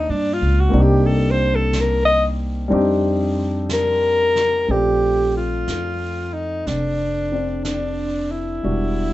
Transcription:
0.00 0.67 A#3 soft
0.00 0.70 C4 soft
0.00 0.72 D4 soft
0.00 0.12 D#4 medium
0.00 0.76 D#4 soft
0.00 0.76 G4 medium
0.00 0.74 G#4 medium
0.09 0.40 G2 medium
0.09 0.35 D4 medium
0.34 0.62 F4 medium
0.42 0.72 C#2 medium
0.60 0.83 F#4 medium
0.69 2.68 A#3 medium
0.69 2.69 C4 soft
0.73 2.67 C2 medium
0.73 2.69 D4 soft
0.73 2.71 D#4 soft
0.73 brush sweep soft
0.80 2.72 G4 medium
0.80 1.08 G4 medium
1.06 1.32 A4 medium
1.31 1.57 C5 loud
1.56 1.82 A4 medium
1.73 brush sweep soft
1.73 snare medium
1.73 hi-hat pedal medium
1.81 2.04 A#4 medium
2.05 2.25 D#5 loud
2.68 4.65 F2 medium
2.68 4.68 G3 medium
2.68 4.67 C4 medium
2.68 4.69 D4 medium
2.68 brush sweep soft
2.73 4.70 D#4 medium
2.73 4.70 G4 medium
3.69 brush sweep soft
3.69 snare medium
3.69 hi-hat pedal medium
3.74 4.72 A#4 loud
4.36 snare soft
4.67 5.64 A#1 medium
4.67 8.63 A3 soft
4.67 7.30 C4 soft
4.67 8.65 D5 soft
4.67 brush sweep soft
4.71 8.66 F3 soft
4.71 5.36 G4 medium
5.37 6.35 F4 medium
5.68 6.63 F2 medium
5.68 brush sweep soft
5.68 snare soft
5.68 hi-hat pedal soft
6.33 6.68 D#4 medium
6.67 8.60 F1 medium
6.67 7.64 D4 medium
6.67 brush sweep soft
6.67 snare soft
7.32 8.64 C4 soft
7.32 8.63 D4 soft
7.64 8.33 D4 medium
7.64 brush sweep soft
7.64 snare soft
7.64 hi-hat pedal soft
8.31 9.13 E4 medium
8.63 9.13 E1 medium
8.63 9.13 G3 soft
8.63 9.13 B3 soft
8.63 9.13 D4 soft
8.63 9.13 F#4 soft
8.63 brush sweep soft

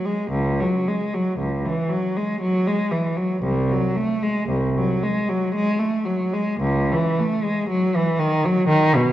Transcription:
0.05 0.33 G#3 soft
0.31 0.59 C#2 medium
0.60 0.87 F#3 medium
0.88 1.14 G#3 medium
1.14 1.40 F#3 medium
1.40 1.65 C#2 medium
1.66 1.91 E3 medium
1.89 2.16 F#3 medium
2.17 2.43 G#3 medium
2.41 2.67 F#3 medium
2.67 2.94 G#3 medium
2.92 3.19 E3 soft
3.17 3.45 F#3 medium
3.43 3.70 C2 medium
3.71 3.98 F#3 medium
3.96 4.24 A3 medium
4.23 4.50 G#3 medium
4.49 4.76 C2 medium
4.78 5.04 F#3 medium
5.03 5.29 G#3 medium
5.29 5.55 F#3 medium
5.55 5.80 G#3 medium
5.79 6.07 A3 medium
6.05 6.34 F#3 medium
6.34 6.62 G#3 medium
6.61 6.89 C#2 medium
6.92 7.18 E3 medium
7.19 7.44 A3 medium
7.44 7.69 G#3 medium
7.69 7.94 F#3 medium
7.96 8.20 E3 medium
8.19 8.44 D#3 medium
8.45 8.70 F#3 medium
8.69 8.94 D#3 medium
8.96 9.12 B2 medium

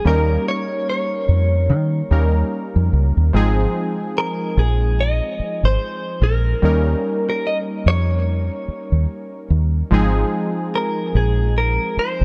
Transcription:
0.04 0.36 D#2 loud
0.04 2.06 G3 medium
0.04 2.07 A#3 medium
0.04 2.07 C#4 medium
0.04 2.08 D#4 medium
0.04 0.45 A#4 medium
0.04 2.08 A#4 medium
0.48 0.88 C#5 loud
0.90 2.90 C#5 medium
1.28 1.71 F2 medium
1.70 2.01 D#3 loud
2.11 2.42 D#2 medium
2.11 3.34 G3 medium
2.11 3.34 A#3 medium
2.11 3.34 C#4 soft
2.11 3.35 D#4 medium
2.11 3.35 A#4 medium
2.76 2.89 F2 medium
2.93 3.11 C#2 medium
3.17 3.30 D#2 medium
3.33 3.65 G#1 loud
3.33 6.58 F3 medium
3.33 6.59 G#3 medium
3.33 6.59 C4 medium
3.33 6.59 D#4 medium
3.33 6.60 G#4 medium
4.18 4.59 A#4 medium
4.57 5.20 A#1 medium
4.57 5.00 G#4 medium
5.01 5.65 D#5 medium
5.39 muted fingered electric bass stroke soft
5.63 5.76 G#1 medium
5.63 6.24 C5 loud
6.22 6.53 A#1 medium
6.22 7.28 A#4 medium
6.62 6.94 D#2 loud
6.62 9.87 G3 medium
6.62 9.87 A#3 medium
6.62 9.88 C#4 medium
6.62 9.88 D#4 medium
6.62 9.89 A#4 medium
7.30 7.46 A#4 medium
7.47 7.58 D#5 medium
7.86 8.49 F2 medium
7.86 9.47 C#5 medium
8.68 muted fingered electric bass stroke soft
8.92 9.05 D#2 medium
9.50 9.82 D#2 medium
9.91 10.23 G#1 loud
9.91 12.25 F3 medium
9.91 12.25 G#3 medium
9.91 12.25 C4 medium
9.91 12.25 D#4 medium
9.91 12.25 G#4 medium
10.75 11.17 A#4 medium
11.15 11.77 A#1 medium
11.15 11.54 G#4 medium
11.58 11.99 A#4 medium
11.97 12.25 C5 loud
11.97 muted fingered electric bass stroke soft
12.21 12.25 G#1 medium

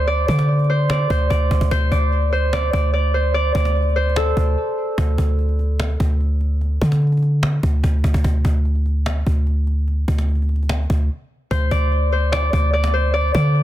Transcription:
0.00 0.25 D2 loud
0.00 0.69 C5 medium
0.07 0.28 D5 loud
0.07 cajon slap soft
0.28 1.07 D3 loud
0.28 0.90 D5 medium
0.28 cajon bass medium
0.39 cajon slap medium
0.49 cajon slap soft
0.54 cajon slap soft
0.59 cajon slap soft
0.64 cajon slap soft
0.69 1.10 C5 medium
0.69 cajon slap soft
0.90 1.30 D5 medium
0.90 cajon slap loud
1.10 1.30 D2 loud
1.10 1.71 C5 medium
1.10 cajon bass medium
1.30 1.50 D2 loud
1.30 1.91 D5 medium
1.30 cajon bass medium
1.36 cajon slap soft
1.41 cajon slap soft
1.46 cajon slap soft
1.51 1.61 D2 loud
1.51 cajon bass loud
1.61 1.71 D2 loud
1.61 cajon bass loud
1.71 1.91 D2 loud
1.71 2.32 C5 loud
1.71 cajon bass loud
1.91 2.70 D2 loud
1.91 2.52 D5 medium
1.91 cajon bass medium
2.12 cajon slap soft
2.22 cajon slap soft
2.33 3.14 C5 medium
2.33 cajon slap soft
2.53 2.73 D5 medium
2.53 cajon slap loud
2.63 cajon slap soft
2.73 3.52 D2 loud
2.73 2.93 D5 medium
2.73 cajon bass medium
2.93 3.34 D5 medium
2.93 cajon slap soft
3.14 3.96 C5 medium
3.14 cajon slap soft
3.34 3.55 D5 loud
3.34 cajon slap soft
3.55 4.33 D2 loud
3.55 5.40 D5 medium
3.55 cajon bass medium
3.65 cajon slap medium
3.75 cajon slap soft
3.82 cajon slap soft
3.89 cajon slap soft
3.96 5.94 C5 medium
3.96 cajon slap soft
4.03 cajon slap soft
4.10 cajon slap soft
4.16 6.36 A4 medium
4.16 cajon slap loud
4.23 cajon slap soft
4.30 cajon slap soft
4.37 4.56 D2 loud
4.37 cajon bass medium
4.98 5.18 D2 loud
4.98 cajon bass loud
5.18 5.97 D2 loud
5.18 cajon bass medium
5.39 cajon slap soft
5.49 cajon slap soft
5.59 cajon slap soft
5.80 cajon slap loud
5.90 cajon slap soft
6.00 6.78 D2 loud
6.00 cajon bass medium
6.20 cajon slap soft
6.41 cajon slap soft
6.61 cajon slap soft
6.82 7.60 D3 loud
6.82 cajon bass medium
6.92 cajon slap medium
7.02 cajon slap soft
7.07 cajon slap soft
7.12 cajon slap soft
7.17 cajon slap soft
7.23 cajon slap soft
7.43 cajon slap loud
7.63 7.83 D2 loud
7.63 cajon bass medium
7.84 8.03 D2 loud
7.84 cajon bass loud
7.89 cajon slap soft
7.94 cajon slap soft
7.99 cajon slap soft
8.04 8.14 D2 loud
8.04 cajon bass loud
8.14 8.24 D2 loud
8.14 cajon bass loud
8.24 8.44 D2 loud
8.24 cajon bass loud
8.45 9.23 D2 loud
8.45 cajon bass medium
8.65 cajon slap soft
8.75 cajon slap soft
8.86 cajon slap soft
9.06 cajon slap loud
9.16 cajon slap soft
9.27 10.05 D2 loud
9.27 cajon bass medium
9.47 cajon slap soft
9.67 cajon slap soft
9.88 cajon slap soft
10.08 10.86 D2 loud
10.08 cajon bass medium
10.18 cajon slap medium
10.29 cajon slap soft
10.35 cajon slap soft
10.42 cajon slap soft
10.49 cajon slap soft
10.56 cajon slap soft
10.63 cajon slap soft
10.69 cajon slap loud
10.76 cajon slap soft
10.83 cajon slap soft
10.90 11.09 D2 loud
10.90 cajon bass medium
11.51 11.71 D2 loud
11.51 12.12 C5 loud
11.51 cajon bass loud
11.71 12.50 D2 loud
11.71 12.32 D5 medium
11.71 cajon bass medium
11.78 cajon slap soft
11.85 cajon slap soft
11.92 cajon slap soft
12.12 12.93 C5 medium
12.12 cajon slap soft
12.32 12.53 D5 medium
12.32 cajon slap loud
12.39 cajon slap soft
12.46 cajon slap soft
12.53 13.31 D2 loud
12.53 12.73 D5 medium
12.53 cajon bass medium
12.73 13.13 D5 medium
12.73 cajon slap medium
12.84 cajon slap medium
12.94 13.63 C5 medium
12.94 cajon slap soft
13.01 cajon slap soft
13.08 cajon slap soft
13.14 13.34 D5 loud
13.14 cajon slap soft
13.21 cajon slap soft
13.28 cajon slap soft
13.35 13.63 D3 loud
13.35 13.63 D5 medium
13.35 cajon bass loud
13.55 cajon slap soft

